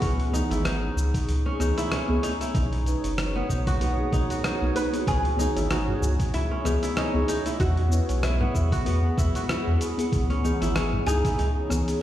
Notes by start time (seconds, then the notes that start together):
Already playing: B3 E4 F#4 G#4
0.02 C#2 C#4 G#4 C#5 C#6, kick, open hi-hat, cabasa
0.20 open hi-hat
0.32 E3 B3 D#4, cabasa
0.36 G#4
0.51 G#1 E4, open hi-hat, cabasa
0.65 D#4, cross-stick, open hi-hat, cabasa
0.96 C#2, cabasa
1.14 kick, open hi-hat, cabasa
1.28 C#2, open hi-hat, cabasa
1.46 C#4
1.59 C#2 E3 B3 D#4 G#4, cross-stick, cabasa
1.77 E4, open hi-hat, cabasa
1.91 C#4, cross-stick, open hi-hat, cabasa
2.08 C#2 B3 E4 G#4
2.23 D#4, open hi-hat, cabasa
2.41 E4, open hi-hat, cabasa
2.54 B1 D#4 F#4 F#5 D#6, kick, open hi-hat, cabasa
2.73 open hi-hat
2.86 D#4 B4, open hi-hat, cabasa
3.04 F#1, open hi-hat, cabasa
3.18 cross-stick, open hi-hat, cabasa
3.36 B3
3.49 B1 D#4, kick, cabasa
3.67 F#4, kick, open hi-hat, cabasa
3.80 B1 A#3 B3 D#4 F#4, open hi-hat, cabasa
3.97 A#3 D#4 G#4
4.11 B1 D#4 G#4 A#4, kick, open hi-hat, cabasa
4.30 F#4, open hi-hat, cabasa
4.44 D#4, cross-stick, open hi-hat, cabasa
4.61 B1 A#3 D#4 B4
4.74 A#3 D#4 F#4 B4, open hi-hat, cabasa
4.92 B3 E4 G#4, open hi-hat, cabasa
5.07 C#2 C#4 G#4 C#6, kick, open hi-hat, cabasa
5.25 open hi-hat
5.37 E3 B3 D#4, cabasa
5.41 G#4
5.56 G#1 E4, open hi-hat, tabla na, cabasa
5.70 D#4 F#4, cross-stick, open hi-hat, cabasa
5.88 tabla tin, tabla ge
6.02 C#2, tabla na, tabla ge, cabasa
6.19 kick, open hi-hat, cabasa
6.34 C#2 E4, open hi-hat, cabasa
6.51 C#4
6.64 C#2 E3 B3 D#4 G#4, cross-stick, tabla na, cabasa
6.83 E4, open hi-hat, cabasa
6.97 C#4 D#4, cross-stick, open hi-hat, cabasa
7.13 C#2 B3 E4 G#4
7.28 D#4, open hi-hat, cabasa
7.46 E4, open hi-hat, cabasa
7.60 E2 E4 F#4 G#4 F#5 B5, kick, open hi-hat, cabasa
7.77 open hi-hat
7.89 B3 E4, cabasa
7.93 B4
8.09 B1, open hi-hat, tabla na, cabasa
8.23 E4, cross-stick, open hi-hat, cabasa
8.40 B3, tabla tin, tabla ge
8.54 E2 E4, kick, tabla na, tabla ge, cabasa
8.72 F#4, kick, open hi-hat, cabasa
8.85 E2 B3 E4 F#4, open hi-hat, cabasa
9.03 B3 E4 G#4, tabla na, tabla tin
9.18 E2 E4, kick, cabasa
9.35 F#4, open hi-hat, cabasa
9.49 E4, cross-stick, open hi-hat, cabasa
9.67 E2, tabla tin
9.81 open hi-hat, tabla na, cabasa
9.97 B3 E4 G#4, open hi-hat, tabla tin, cabasa
10.12 C#2 C#5 C#6, kick, open hi-hat, cabasa
10.30 C#4, open hi-hat
10.42 E3 B3 D#4, cabasa
10.46 G#4
10.60 G#1 E4, open hi-hat, tabla na, cabasa
10.75 C#4, cross-stick, open hi-hat, cabasa
10.92 tabla tin, tabla ge
11.06 C#2 D#4 G#4, tabla na, tabla ge, cabasa
11.25 E4, kick, open hi-hat, cabasa
11.38 C#2 D#4, open hi-hat, cabasa
11.69 C#2 E3 B3 G#4, cross-stick, tabla na, cabasa
11.88 open hi-hat, cabasa